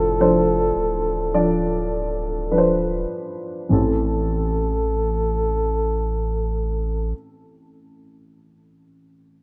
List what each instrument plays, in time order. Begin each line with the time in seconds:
Already playing: sub bass F1, upright piano A2 F3 D4 C5, flugelhorn A4
0.20 upright piano F3 D4 C5
0.76 sub bass D1
1.34 upright piano F3 D4 D5
2.51 upright piano F3 D4 B4
2.58 upright piano C5
3.69 upright piano A1 E3 C4 A4, sub bass A1
3.73 flugelhorn A4